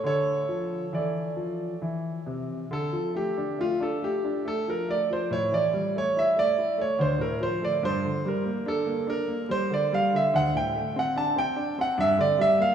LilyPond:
<<
  \new Staff \with { instrumentName = "Grand piano" } { \time 3/4 \key d \minor \tempo 4 = 71 <a' cis''>4 <a' d''>4 r4 | a'8 g'8 f'16 a'16 g'8 a'16 bes'16 d''16 c''16 | cis''16 d''8 cis''16 e''16 d''8 cis''16 c''16 bes'16 c''16 d''16 | c''8 bes'8 a'8 bes'8 c''16 d''16 f''16 e''16 |
fis''16 g''8 fis''16 a''16 g''8 fis''16 e''16 d''16 e''16 f''16 | }
  \new Staff \with { instrumentName = "Grand piano" } { \clef bass \time 3/4 \key d \minor d8 f8 e8 f8 e8 c8 | d16 f16 a16 d'16 a16 d'16 a16 d'16 a16 f16 a16 f16 | a,16 e16 g16 a16 e'16 a16 e'16 a16 d,16 a,16 f16 a16 | g,16 d16 g16 bes16 d'16 bes16 d'16 bes16 g16 d16 g16 d16 |
d,16 a,16 a16 c'16 d'16 c'16 d'16 c'16 g,16 d16 g16 bes16 | }
>>